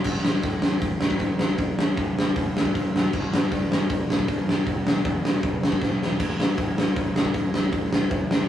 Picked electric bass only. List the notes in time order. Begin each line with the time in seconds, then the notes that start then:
0.06 A1
0.25 A1
0.44 A2
0.63 A1
0.82 A1
0.99 D2
1.20 A1
1.40 A1
1.58 A1
1.78 A1
1.97 A2
2.15 A1
2.36 A1
2.55 D2
2.75 A1
2.94 F#1
3.13 G1
3.32 G1
3.52 G2
3.70 G1
3.90 G1
4.08 B1
4.28 G1
4.47 G1
4.66 E1
4.85 E1
5.05 E2
5.24 E1
5.43 E1
5.62 A1
5.82 E1
6.00 E1
6.20 A1
6.37 A1
6.58 A2
6.77 A1
6.97 A1
7.16 D2
7.35 A1
7.53 A1
7.73 A1
7.92 A1
8.11 A2
8.31 A1